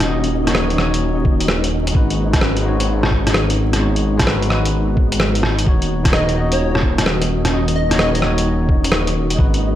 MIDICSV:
0, 0, Header, 1, 7, 480
1, 0, Start_track
1, 0, Tempo, 465116
1, 89, Time_signature, 4, 2, 24, 8
1, 10065, End_track
2, 0, Start_track
2, 0, Title_t, "Digital synth lead"
2, 0, Program_c, 0, 84
2, 6330, Note_on_c, 0, 75, 94
2, 6585, Note_off_c, 0, 75, 0
2, 6735, Note_on_c, 0, 73, 90
2, 6979, Note_off_c, 0, 73, 0
2, 8005, Note_on_c, 0, 75, 84
2, 8230, Note_off_c, 0, 75, 0
2, 8251, Note_on_c, 0, 75, 93
2, 8352, Note_off_c, 0, 75, 0
2, 8406, Note_on_c, 0, 75, 78
2, 8458, Note_off_c, 0, 75, 0
2, 10065, End_track
3, 0, Start_track
3, 0, Title_t, "Synth texture"
3, 0, Program_c, 1, 99
3, 0, Note_on_c, 1, 63, 85
3, 0, Note_on_c, 1, 75, 84
3, 5837, Note_off_c, 1, 75, 0
3, 5839, Note_off_c, 1, 63, 0
3, 5849, Note_on_c, 1, 75, 86
3, 5851, Note_on_c, 1, 63, 87
3, 10065, Note_off_c, 1, 63, 0
3, 10065, Note_off_c, 1, 75, 0
3, 10065, End_track
4, 0, Start_track
4, 0, Title_t, "Tine electric piano"
4, 0, Program_c, 2, 4
4, 0, Control_c, 2, 64, 127
4, 0, Note_on_c, 2, 51, 84
4, 0, Note_on_c, 2, 63, 77
4, 0, Note_on_c, 2, 66, 75
4, 0, Note_on_c, 2, 73, 83
4, 0, Note_on_c, 2, 75, 94
4, 63, Note_off_c, 2, 51, 0
4, 63, Note_on_c, 2, 51, 69
4, 77, Note_off_c, 2, 63, 0
4, 77, Note_on_c, 2, 63, 61
4, 94, Note_off_c, 2, 66, 0
4, 94, Note_on_c, 2, 66, 62
4, 107, Note_off_c, 2, 75, 0
4, 107, Note_on_c, 2, 75, 73
4, 437, Note_off_c, 2, 51, 0
4, 444, Note_off_c, 2, 63, 0
4, 452, Note_off_c, 2, 66, 0
4, 459, Note_off_c, 2, 75, 0
4, 464, Note_on_c, 2, 51, 84
4, 478, Note_on_c, 2, 63, 75
4, 492, Note_on_c, 2, 66, 79
4, 506, Note_off_c, 2, 73, 0
4, 506, Note_on_c, 2, 73, 94
4, 753, Note_off_c, 2, 51, 0
4, 766, Note_on_c, 2, 51, 69
4, 780, Note_off_c, 2, 63, 0
4, 791, Note_off_c, 2, 66, 0
4, 792, Note_on_c, 2, 63, 63
4, 798, Note_off_c, 2, 73, 0
4, 820, Note_on_c, 2, 66, 67
4, 848, Note_on_c, 2, 73, 76
4, 1968, Note_off_c, 2, 51, 0
4, 1981, Note_off_c, 2, 63, 0
4, 1987, Note_on_c, 2, 56, 81
4, 1995, Note_off_c, 2, 66, 0
4, 2001, Note_on_c, 2, 63, 74
4, 2009, Note_off_c, 2, 73, 0
4, 2015, Note_on_c, 2, 66, 77
4, 2022, Control_c, 2, 64, 0
4, 2028, Note_on_c, 2, 71, 91
4, 2195, Control_c, 2, 64, 127
4, 2359, Note_off_c, 2, 56, 0
4, 2366, Note_off_c, 2, 63, 0
4, 2373, Note_off_c, 2, 66, 0
4, 2379, Note_off_c, 2, 71, 0
4, 2387, Note_on_c, 2, 56, 76
4, 2400, Note_on_c, 2, 63, 70
4, 2412, Note_on_c, 2, 66, 70
4, 2429, Note_on_c, 2, 71, 84
4, 2675, Note_off_c, 2, 56, 0
4, 2687, Note_on_c, 2, 56, 83
4, 2701, Note_off_c, 2, 63, 0
4, 2711, Note_off_c, 2, 66, 0
4, 2713, Note_on_c, 2, 63, 77
4, 2720, Note_off_c, 2, 71, 0
4, 2740, Note_on_c, 2, 66, 77
4, 2769, Note_on_c, 2, 73, 92
4, 3888, Note_off_c, 2, 56, 0
4, 3901, Note_off_c, 2, 63, 0
4, 3906, Note_on_c, 2, 56, 70
4, 3915, Note_off_c, 2, 66, 0
4, 3921, Note_on_c, 2, 63, 64
4, 3929, Note_off_c, 2, 73, 0
4, 3935, Note_on_c, 2, 66, 62
4, 3947, Note_on_c, 2, 73, 74
4, 4278, Note_off_c, 2, 56, 0
4, 4286, Note_off_c, 2, 63, 0
4, 4293, Note_off_c, 2, 66, 0
4, 4298, Note_off_c, 2, 73, 0
4, 4306, Note_on_c, 2, 56, 88
4, 4321, Note_on_c, 2, 63, 79
4, 4335, Note_on_c, 2, 66, 78
4, 4348, Note_on_c, 2, 71, 92
4, 4597, Note_off_c, 2, 56, 0
4, 4610, Note_on_c, 2, 56, 69
4, 4621, Note_off_c, 2, 63, 0
4, 4633, Note_off_c, 2, 66, 0
4, 4634, Note_on_c, 2, 63, 63
4, 4639, Note_off_c, 2, 71, 0
4, 4664, Note_on_c, 2, 66, 64
4, 4691, Note_on_c, 2, 71, 75
4, 5810, Note_off_c, 2, 56, 0
4, 5822, Note_off_c, 2, 63, 0
4, 5828, Note_on_c, 2, 51, 84
4, 5837, Note_off_c, 2, 66, 0
4, 5841, Note_on_c, 2, 63, 74
4, 5851, Note_off_c, 2, 71, 0
4, 5855, Note_on_c, 2, 66, 77
4, 5861, Control_c, 2, 64, 0
4, 5870, Note_on_c, 2, 73, 89
4, 6027, Control_c, 2, 64, 127
4, 6199, Note_off_c, 2, 51, 0
4, 6206, Note_off_c, 2, 63, 0
4, 6213, Note_off_c, 2, 66, 0
4, 6219, Note_on_c, 2, 51, 74
4, 6220, Note_off_c, 2, 73, 0
4, 6234, Note_on_c, 2, 63, 67
4, 6246, Note_on_c, 2, 66, 69
4, 6263, Note_on_c, 2, 73, 83
4, 6515, Note_off_c, 2, 51, 0
4, 6527, Note_on_c, 2, 51, 83
4, 6542, Note_off_c, 2, 63, 0
4, 6548, Note_off_c, 2, 66, 0
4, 6556, Note_on_c, 2, 63, 75
4, 6557, Note_off_c, 2, 73, 0
4, 6580, Note_on_c, 2, 66, 79
4, 6608, Note_on_c, 2, 75, 90
4, 7728, Note_off_c, 2, 51, 0
4, 7743, Note_off_c, 2, 63, 0
4, 7745, Note_on_c, 2, 51, 69
4, 7755, Note_off_c, 2, 66, 0
4, 7759, Note_on_c, 2, 63, 63
4, 7769, Note_off_c, 2, 75, 0
4, 7771, Note_on_c, 2, 66, 62
4, 7785, Note_on_c, 2, 75, 73
4, 8118, Note_off_c, 2, 51, 0
4, 8125, Note_off_c, 2, 63, 0
4, 8131, Note_off_c, 2, 66, 0
4, 8138, Note_off_c, 2, 75, 0
4, 8141, Note_on_c, 2, 51, 87
4, 8156, Note_on_c, 2, 63, 81
4, 8170, Note_on_c, 2, 66, 79
4, 8181, Note_on_c, 2, 73, 95
4, 8435, Note_off_c, 2, 51, 0
4, 8447, Note_on_c, 2, 51, 71
4, 8461, Note_off_c, 2, 63, 0
4, 8470, Note_off_c, 2, 66, 0
4, 8473, Note_on_c, 2, 63, 62
4, 8476, Note_off_c, 2, 73, 0
4, 8498, Note_on_c, 2, 66, 66
4, 8529, Note_on_c, 2, 73, 78
4, 9648, Note_off_c, 2, 51, 0
4, 9659, Note_on_c, 2, 56, 84
4, 9661, Note_off_c, 2, 63, 0
4, 9674, Note_off_c, 2, 66, 0
4, 9675, Note_on_c, 2, 63, 75
4, 9688, Note_on_c, 2, 66, 79
4, 9689, Note_off_c, 2, 73, 0
4, 9701, Note_on_c, 2, 71, 90
4, 9702, Control_c, 2, 64, 0
4, 9871, Control_c, 2, 64, 127
4, 10035, Note_off_c, 2, 56, 0
4, 10043, Note_off_c, 2, 63, 0
4, 10049, Note_off_c, 2, 66, 0
4, 10056, Note_off_c, 2, 71, 0
4, 10065, End_track
5, 0, Start_track
5, 0, Title_t, "Ambient pad"
5, 0, Program_c, 3, 92
5, 0, Note_on_c, 3, 51, 86
5, 0, Note_on_c, 3, 58, 77
5, 0, Note_on_c, 3, 61, 73
5, 0, Note_on_c, 3, 66, 69
5, 2002, Note_off_c, 3, 58, 0
5, 2417, Note_on_c, 3, 56, 77
5, 3013, Note_on_c, 3, 59, 89
5, 3063, Note_off_c, 3, 61, 0
5, 5845, Note_off_c, 3, 56, 0
5, 5847, Note_off_c, 3, 59, 0
5, 6094, Note_on_c, 3, 58, 68
5, 6128, Note_on_c, 3, 61, 71
5, 9690, Note_off_c, 3, 58, 0
5, 10065, Note_off_c, 3, 51, 0
5, 10065, Note_off_c, 3, 61, 0
5, 10065, Note_off_c, 3, 66, 0
5, 10065, End_track
6, 0, Start_track
6, 0, Title_t, "Detuned saw bass"
6, 0, Program_c, 4, 39
6, 0, Note_on_c, 4, 27, 87
6, 1990, Note_off_c, 4, 27, 0
6, 2011, Note_on_c, 4, 32, 88
6, 5833, Note_off_c, 4, 32, 0
6, 5847, Note_on_c, 4, 27, 88
6, 9672, Note_off_c, 4, 27, 0
6, 9687, Note_on_c, 4, 32, 89
6, 10065, Note_off_c, 4, 32, 0
6, 10065, End_track
7, 0, Start_track
7, 0, Title_t, "Drums"
7, 4, Note_on_c, 9, 37, 47
7, 4, Note_on_c, 9, 42, 51
7, 107, Note_off_c, 9, 37, 0
7, 107, Note_off_c, 9, 42, 0
7, 245, Note_on_c, 9, 42, 29
7, 348, Note_off_c, 9, 42, 0
7, 486, Note_on_c, 9, 37, 59
7, 486, Note_on_c, 9, 42, 50
7, 564, Note_off_c, 9, 37, 0
7, 564, Note_on_c, 9, 37, 95
7, 589, Note_off_c, 9, 42, 0
7, 667, Note_off_c, 9, 37, 0
7, 726, Note_on_c, 9, 42, 29
7, 808, Note_on_c, 9, 37, 58
7, 829, Note_off_c, 9, 42, 0
7, 911, Note_off_c, 9, 37, 0
7, 969, Note_on_c, 9, 42, 52
7, 1072, Note_off_c, 9, 42, 0
7, 1289, Note_on_c, 9, 36, 94
7, 1392, Note_off_c, 9, 36, 0
7, 1450, Note_on_c, 9, 42, 50
7, 1531, Note_on_c, 9, 37, 92
7, 1553, Note_off_c, 9, 42, 0
7, 1634, Note_off_c, 9, 37, 0
7, 1691, Note_on_c, 9, 42, 42
7, 1794, Note_off_c, 9, 42, 0
7, 1931, Note_on_c, 9, 42, 50
7, 2010, Note_on_c, 9, 36, 103
7, 2034, Note_off_c, 9, 42, 0
7, 2113, Note_off_c, 9, 36, 0
7, 2172, Note_on_c, 9, 42, 30
7, 2275, Note_off_c, 9, 42, 0
7, 2409, Note_on_c, 9, 37, 62
7, 2409, Note_on_c, 9, 42, 53
7, 2410, Note_on_c, 9, 36, 97
7, 2491, Note_off_c, 9, 37, 0
7, 2491, Note_on_c, 9, 37, 99
7, 2513, Note_off_c, 9, 36, 0
7, 2513, Note_off_c, 9, 42, 0
7, 2594, Note_off_c, 9, 37, 0
7, 2648, Note_on_c, 9, 42, 29
7, 2751, Note_off_c, 9, 42, 0
7, 2890, Note_on_c, 9, 42, 51
7, 2993, Note_off_c, 9, 42, 0
7, 3129, Note_on_c, 9, 37, 61
7, 3210, Note_on_c, 9, 36, 51
7, 3232, Note_off_c, 9, 37, 0
7, 3313, Note_off_c, 9, 36, 0
7, 3372, Note_on_c, 9, 37, 59
7, 3372, Note_on_c, 9, 42, 53
7, 3451, Note_off_c, 9, 37, 0
7, 3451, Note_on_c, 9, 37, 95
7, 3476, Note_off_c, 9, 42, 0
7, 3554, Note_off_c, 9, 37, 0
7, 3612, Note_on_c, 9, 42, 41
7, 3715, Note_off_c, 9, 42, 0
7, 3852, Note_on_c, 9, 37, 51
7, 3852, Note_on_c, 9, 42, 54
7, 3955, Note_off_c, 9, 37, 0
7, 3955, Note_off_c, 9, 42, 0
7, 4089, Note_on_c, 9, 42, 30
7, 4192, Note_off_c, 9, 42, 0
7, 4328, Note_on_c, 9, 36, 57
7, 4329, Note_on_c, 9, 37, 65
7, 4329, Note_on_c, 9, 42, 56
7, 4406, Note_off_c, 9, 37, 0
7, 4406, Note_on_c, 9, 37, 99
7, 4432, Note_off_c, 9, 36, 0
7, 4432, Note_off_c, 9, 42, 0
7, 4509, Note_off_c, 9, 37, 0
7, 4566, Note_on_c, 9, 42, 31
7, 4647, Note_on_c, 9, 37, 55
7, 4669, Note_off_c, 9, 42, 0
7, 4751, Note_off_c, 9, 37, 0
7, 4804, Note_on_c, 9, 42, 54
7, 4907, Note_off_c, 9, 42, 0
7, 5128, Note_on_c, 9, 36, 94
7, 5231, Note_off_c, 9, 36, 0
7, 5285, Note_on_c, 9, 42, 56
7, 5364, Note_on_c, 9, 37, 99
7, 5388, Note_off_c, 9, 42, 0
7, 5467, Note_off_c, 9, 37, 0
7, 5524, Note_on_c, 9, 42, 45
7, 5605, Note_on_c, 9, 37, 60
7, 5628, Note_off_c, 9, 42, 0
7, 5708, Note_off_c, 9, 37, 0
7, 5764, Note_on_c, 9, 42, 53
7, 5847, Note_on_c, 9, 36, 107
7, 5868, Note_off_c, 9, 42, 0
7, 5950, Note_off_c, 9, 36, 0
7, 6005, Note_on_c, 9, 42, 32
7, 6108, Note_off_c, 9, 42, 0
7, 6245, Note_on_c, 9, 36, 102
7, 6245, Note_on_c, 9, 37, 65
7, 6245, Note_on_c, 9, 42, 58
7, 6325, Note_off_c, 9, 37, 0
7, 6325, Note_on_c, 9, 37, 97
7, 6348, Note_off_c, 9, 36, 0
7, 6348, Note_off_c, 9, 42, 0
7, 6428, Note_off_c, 9, 37, 0
7, 6489, Note_on_c, 9, 42, 32
7, 6592, Note_off_c, 9, 42, 0
7, 6726, Note_on_c, 9, 42, 57
7, 6829, Note_off_c, 9, 42, 0
7, 6967, Note_on_c, 9, 37, 64
7, 7045, Note_on_c, 9, 36, 58
7, 7071, Note_off_c, 9, 37, 0
7, 7148, Note_off_c, 9, 36, 0
7, 7207, Note_on_c, 9, 37, 61
7, 7207, Note_on_c, 9, 42, 57
7, 7288, Note_off_c, 9, 37, 0
7, 7288, Note_on_c, 9, 37, 95
7, 7311, Note_off_c, 9, 42, 0
7, 7391, Note_off_c, 9, 37, 0
7, 7447, Note_on_c, 9, 42, 46
7, 7550, Note_off_c, 9, 42, 0
7, 7688, Note_on_c, 9, 37, 54
7, 7688, Note_on_c, 9, 42, 54
7, 7791, Note_off_c, 9, 37, 0
7, 7791, Note_off_c, 9, 42, 0
7, 7926, Note_on_c, 9, 42, 32
7, 8029, Note_off_c, 9, 42, 0
7, 8164, Note_on_c, 9, 37, 59
7, 8164, Note_on_c, 9, 42, 58
7, 8246, Note_off_c, 9, 37, 0
7, 8246, Note_on_c, 9, 37, 102
7, 8267, Note_off_c, 9, 42, 0
7, 8349, Note_off_c, 9, 37, 0
7, 8411, Note_on_c, 9, 42, 33
7, 8484, Note_on_c, 9, 37, 63
7, 8514, Note_off_c, 9, 42, 0
7, 8588, Note_off_c, 9, 37, 0
7, 8648, Note_on_c, 9, 42, 56
7, 8751, Note_off_c, 9, 42, 0
7, 8966, Note_on_c, 9, 36, 101
7, 9069, Note_off_c, 9, 36, 0
7, 9127, Note_on_c, 9, 42, 56
7, 9202, Note_on_c, 9, 37, 102
7, 9230, Note_off_c, 9, 42, 0
7, 9306, Note_off_c, 9, 37, 0
7, 9364, Note_on_c, 9, 42, 46
7, 9467, Note_off_c, 9, 42, 0
7, 9602, Note_on_c, 9, 42, 55
7, 9687, Note_on_c, 9, 36, 114
7, 9705, Note_off_c, 9, 42, 0
7, 9790, Note_off_c, 9, 36, 0
7, 9845, Note_on_c, 9, 42, 31
7, 9948, Note_off_c, 9, 42, 0
7, 10065, End_track
0, 0, End_of_file